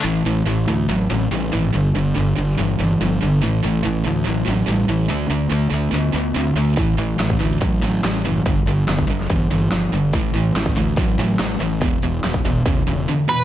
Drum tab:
HH |----------------|----------------|----------------|----------------|
SD |----------------|----------------|----------------|----------------|
BD |----------------|----------------|----------------|----------------|

HH |x-x-x-x-x-x-x-x-|x-x-x-x-x-x-x-x-|x-x-x-x-x-x-x-x-|x-x-x-x-x-x-----|
SD |----o-------o---|----o--o----o---|----o-------o---|----o-----------|
BD |o----o--o-------|o----o--o-------|o----o--o-------|o----o--o-------|